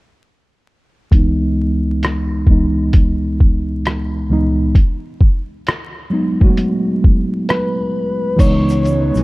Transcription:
1.11 tine electric piano C#2 E3 G#3 B3 D#4, kick, closed hi-hat
2.03 cross-stick, closed hi-hat
2.47 tine electric piano C#2 E3 G#3 B3, kick
2.51 tine electric piano D#4
2.93 kick, closed hi-hat
3.40 kick
3.85 cross-stick, closed hi-hat
4.29 tine electric piano C#2 E3 G#3 B3 D#4
4.75 kick, closed hi-hat
5.21 kick
5.67 cross-stick, closed hi-hat
6.10 tine electric piano F#3 G#3 B3 D#4
6.40 tine electric piano F#3 G#3 A3 F#4, kick
6.49 tine electric piano B3
6.57 closed hi-hat
7.04 kick
7.49 soft synth lead B4, cross-stick, closed hi-hat
8.36 fretless electric bass C#2, ambient pad C#3 E3 D#4, tine electric piano E3 G#3 B3 D#4, soft synth lead C#5, kick, closed hi-hat, crash, shaker
8.41 ambient pad G#3 B3
8.69 shaker
8.84 shaker
8.87 shaker
9.15 fretless electric bass B1, shaker
9.17 shaker

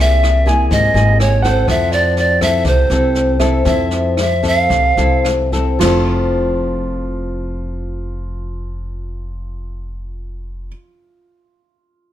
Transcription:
Already playing: upright bass C2, nylon-string guitar C3 A#3 E4 G#4, grand piano D5
0.00 pan flute E5
0.23 cross-stick, snare
0.46 nylon-string guitar A#3 E4 G#4, grand piano G#5, kick, snare
0.71 upright bass G#1, nylon-string guitar C3, pan flute D#5, kick, snare
0.94 upright bass G#1, nylon-string guitar A#3 E4 G#4, snare
1.20 pan flute C#5, cross-stick, snare
1.42 nylon-string guitar C4 E4 A4, pan flute C5, grand piano F#5, kick, snare
1.67 upright bass F2, nylon-string guitar F3, pan flute E5, kick, cross-stick, snare
1.92 pan flute D5, snare
2.17 pan flute D5, snare
2.41 nylon-string guitar C4 E4 A4, pan flute E5, kick, cross-stick, snare
2.64 upright bass C2, nylon-string guitar C3, pan flute C5, kick, snare
2.90 upright bass C2, nylon-string guitar C4 E4 A4, snare
3.15 snare
3.39 nylon-string guitar C4 E4 A4, grand piano E5, kick, cross-stick, snare
3.65 upright bass F2, nylon-string guitar F3 C4 E4 A4, pan flute E5, kick, snare
3.91 snare
4.17 pan flute E5, cross-stick, snare
4.43 nylon-string guitar C4 A4, kick, snare
4.47 pan flute E5
4.59 pan flute F5
4.70 upright bass C2, nylon-string guitar C3, kick, snare
4.97 upright bass C2, nylon-string guitar C4 E4 A4, snare
5.25 cross-stick, snare
5.52 nylon-string guitar C4 E4 A4, kick, snare
5.79 upright bass F1, nylon-string guitar F3 C4, grand piano F4, snare, crash
5.83 nylon-string guitar E4 A4

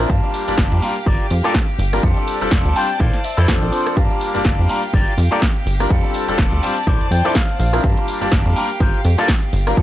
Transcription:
0.09 analog synth bass G2, grand piano G3 F4 A5, violin section G4 F5, muted clean electric guitar stroke, kick, closed hi-hat, maracas
0.23 muted clean electric guitar stroke, closed hi-hat
0.33 muted clean electric guitar stroke, open hi-hat, maracas
0.48 analog synth bass G1, grand piano G3 A#3 D4 F4 A5, closed hi-hat, maracas
0.58 analog synth bass G1, kick, snare, closed hi-hat, maracas
0.72 analog synth bass F2, closed hi-hat
0.82 grand piano G3 A#3 D4 F4 A#4, open hi-hat, maracas
0.96 closed hi-hat, maracas
1.06 analog synth bass G1, clean electric guitar F4 G4 A#4 D5, kick, closed hi-hat
1.20 closed hi-hat
1.30 analog synth bass F2, open hi-hat, maracas
1.44 grand piano G3 A#3 D4 F4 A4, clean electric guitar F4 G4 A#4 D5, cross-stick, closed hi-hat, maracas
1.54 kick, snare, closed hi-hat, maracas
1.68 muted clean electric guitar stroke, closed hi-hat
1.79 analog synth bass G1, open hi-hat, maracas
1.93 grand piano G3 A#3 D4 F4 A#4, cross-stick, closed hi-hat, maracas
2.03 analog synth bass F2, grand piano C4 D4 F4 A4, violin section D5 A5, muted clean electric guitar stroke, kick, closed hi-hat, maracas
2.16 muted clean electric guitar stroke, closed hi-hat
2.27 muted clean electric guitar stroke, open hi-hat, maracas
2.41 analog synth bass F1, grand piano G3 C4 D4 F4 A4, closed hi-hat, maracas
2.51 analog synth bass F1, kick, snare, closed hi-hat, maracas
2.65 analog synth bass D2, closed hi-hat
2.76 grand piano G3 C4 D4 F4 C5, clean electric guitar G5, open hi-hat, maracas
2.89 closed hi-hat, maracas
2.99 analog synth bass A#1, clean electric guitar E4 A4 C5 D5 F5, violin section C5, kick, closed hi-hat, maracas
3.13 snare, closed hi-hat
3.24 clean electric guitar E5, open hi-hat, maracas
3.37 analog synth bass F2, clean electric guitar E4 A4 C5 D5, cross-stick, closed hi-hat, maracas
3.47 analog synth bass F2, grand piano F3 C4 D4 A4, kick, snare, closed hi-hat, maracas
3.61 analog synth bass A#1, muted clean electric guitar stroke, closed hi-hat
3.72 clean electric guitar C5, open hi-hat, maracas
3.86 cross-stick, closed hi-hat, maracas
3.96 analog synth bass G2, grand piano G3 A#3 D4 F4 A5, violin section G4 F5, muted clean electric guitar stroke, kick, closed hi-hat, maracas
4.10 muted clean electric guitar stroke, closed hi-hat
4.20 muted clean electric guitar stroke, open hi-hat, maracas
4.34 analog synth bass G1, grand piano G3 A#3 D4 F4 A5, closed hi-hat, maracas
4.45 analog synth bass G1, kick, snare, closed hi-hat
4.59 analog synth bass F2, closed hi-hat
4.69 grand piano G3 A#3 D4 F4 A#4, open hi-hat, maracas
4.83 closed hi-hat, maracas
4.93 analog synth bass G1, clean electric guitar F4 G4 A#4 D5, kick, closed hi-hat
5.08 closed hi-hat
5.18 analog synth bass F2, open hi-hat, maracas
5.31 grand piano G3 A#3 D4 F4 A4, clean electric guitar F4 G4 A#4 D5, cross-stick, closed hi-hat, maracas
5.42 kick, snare, closed hi-hat, maracas
5.55 muted clean electric guitar stroke, closed hi-hat
5.66 analog synth bass G1, open hi-hat, maracas
5.80 grand piano G3 A#3 D4 F4 A#4, cross-stick, closed hi-hat, maracas
5.90 analog synth bass F2, grand piano G3 C4 D4 F4 A4, violin section D5 A5, muted clean electric guitar stroke, kick, closed hi-hat, maracas
6.03 muted clean electric guitar stroke, closed hi-hat
6.14 muted clean electric guitar stroke, open hi-hat, maracas
6.28 analog synth bass F1, grand piano G3 C4 D4 F4 A4, closed hi-hat, maracas
6.38 analog synth bass F1, kick, snare, closed hi-hat, maracas
6.52 analog synth bass D2, closed hi-hat
6.63 grand piano G3 C4 D4 F4 C5, open hi-hat, maracas
6.77 closed hi-hat, maracas
6.87 analog synth bass A#1, clean electric guitar E4 A4 C5 D5, violin section C5, kick, closed hi-hat, maracas
7.01 analog synth bass F2, closed hi-hat
7.11 analog synth bass F2, clean electric guitar G5, open hi-hat, maracas
7.24 grand piano F3 C4 D4 E4 A4, clean electric guitar E4 A4 C5 D5, cross-stick, closed hi-hat, maracas
7.35 clean electric guitar F5, kick, snare, closed hi-hat, maracas
7.49 muted clean electric guitar stroke, closed hi-hat
7.59 analog synth bass A#1, clean electric guitar F5, open hi-hat, maracas
7.73 grand piano F3 C4 D4 E4 A#4, cross-stick, closed hi-hat, maracas
7.83 analog synth bass G2, grand piano G3, violin section G4 F5, muted clean electric guitar stroke, kick, closed hi-hat
7.97 muted clean electric guitar stroke, closed hi-hat
8.08 muted clean electric guitar stroke, open hi-hat, maracas
8.21 analog synth bass G1, grand piano G3 A#3 D4 F4 A5, closed hi-hat, maracas
8.32 analog synth bass G1, kick, snare, closed hi-hat, maracas
8.46 analog synth bass F2, closed hi-hat
8.56 grand piano G3 A#3 D4 F4 A#4, open hi-hat, maracas
8.70 closed hi-hat, maracas
8.80 analog synth bass G1, clean electric guitar F4 G4 A#4 C5, kick, closed hi-hat, maracas
8.94 closed hi-hat
9.05 analog synth bass F2, open hi-hat, maracas
9.18 grand piano G3 A#3 D4 F4 A4, clean electric guitar F4 G4 A#4 D5, cross-stick, closed hi-hat, maracas
9.28 kick, snare, closed hi-hat, maracas
9.42 muted clean electric guitar stroke, closed hi-hat
9.53 analog synth bass G1, open hi-hat, maracas
9.67 grand piano G3 A#3 D4 F4 A#4, cross-stick, closed hi-hat, maracas
9.77 analog synth bass F2, grand piano C4 D4 F4 A4, violin section G4 D5 A5, muted clean electric guitar stroke, kick, closed hi-hat, maracas

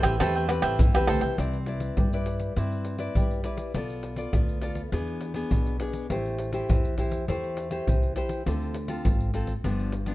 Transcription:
Already playing: nylon-string guitar E3, trombone A3
0.03 upright bass A1, nylon-string guitar C4 G4 B4, cavaquinho C5 E5 G5, pandeiro, tamborim, shaker
0.20 upright bass E2, nylon-string guitar A3 C4 G4 B4, cavaquinho A4 C5 E5 G5, pandeiro, tamborim, shaker, surdo
0.35 cavaquinho C5 E5 G5, pandeiro, shaker
0.48 nylon-string guitar C4 G4 B4, muted cavaquinho stroke, pandeiro, tamborim, shaker
0.62 upright bass A1, cavaquinho C5 E5 G5, pandeiro, tamborim, shaker
0.79 upright bass G2, nylon-string guitar E3, pandeiro, shaker, surdo
0.94 upright bass E2, nylon-string guitar C4 G4 B4, cavaquinho C5 E5 G5, pandeiro, tamborim, shaker
1.07 upright bass D2, cavaquinho A4 C5 E5 G5, pandeiro, tamborim
1.21 upright bass C2, cavaquinho C5 E5 G5, pandeiro, shaker
1.38 upright bass C2, nylon-string guitar C4 E4 B4 D5, pandeiro, surdo
1.53 pandeiro
1.66 nylon-string guitar E4 B4 D5, pandeiro
1.80 pandeiro
1.97 upright bass G2, nylon-string guitar G3, pandeiro, surdo
2.13 nylon-string guitar E4 B4 D5, pandeiro
2.26 pandeiro
2.40 pandeiro
2.56 upright bass G2, nylon-string guitar C4 E4 B4 D5, pandeiro, surdo
2.72 pandeiro
2.85 pandeiro
2.99 nylon-string guitar E4 B4 D5, pandeiro
3.15 upright bass G2, nylon-string guitar G3, pandeiro, surdo
3.31 pandeiro
3.44 nylon-string guitar E4 B4 D5, pandeiro
3.57 pandeiro
3.74 upright bass B1, nylon-string guitar B3 F4 A4 D5, pandeiro, surdo
3.90 pandeiro
4.03 pandeiro
4.16 nylon-string guitar F4 A4 D5, pandeiro
4.33 upright bass D2, nylon-string guitar B3, pandeiro, surdo
4.49 pandeiro
4.62 nylon-string guitar F4 A4 D5, pandeiro
4.75 pandeiro
4.92 upright bass E2, nylon-string guitar E3 B3 D4 G#4, pandeiro, surdo
5.08 pandeiro
5.21 pandeiro
5.34 nylon-string guitar B3 D4 G#4, pandeiro
5.51 upright bass B1, nylon-string guitar B2, pandeiro, surdo
5.67 pandeiro
5.80 nylon-string guitar B3 D4 G#4, pandeiro
5.93 pandeiro
6.10 upright bass A1, nylon-string guitar A3 E4 G4 C5, pandeiro, surdo
6.26 pandeiro
6.39 pandeiro
6.53 nylon-string guitar E4 G4 C5, pandeiro
6.69 upright bass E2, nylon-string guitar E3, pandeiro, surdo
6.85 pandeiro
6.98 nylon-string guitar E4 G4 C5, pandeiro, surdo
7.12 pandeiro
7.28 upright bass E2, nylon-string guitar A3 E4 G4 C5, pandeiro, surdo
7.44 pandeiro
7.57 pandeiro
7.71 nylon-string guitar E4 G4 C5, pandeiro
7.87 upright bass C2, nylon-string guitar E3, pandeiro, surdo
8.03 pandeiro
8.16 nylon-string guitar E4 G4 C5, pandeiro
8.29 pandeiro
8.46 upright bass D2, nylon-string guitar D3 C4 F4 A4, pandeiro, surdo
8.62 pandeiro
8.74 pandeiro
8.88 nylon-string guitar C4 F4 A4, pandeiro
9.05 upright bass G#1, pandeiro, surdo
9.21 pandeiro
9.34 nylon-string guitar C4 F4 A4, pandeiro
9.47 pandeiro
9.64 upright bass G1, nylon-string guitar G2 F3 B3 D4, pandeiro, surdo
9.80 pandeiro
9.92 pandeiro
10.06 nylon-string guitar F3 B3 D4, pandeiro

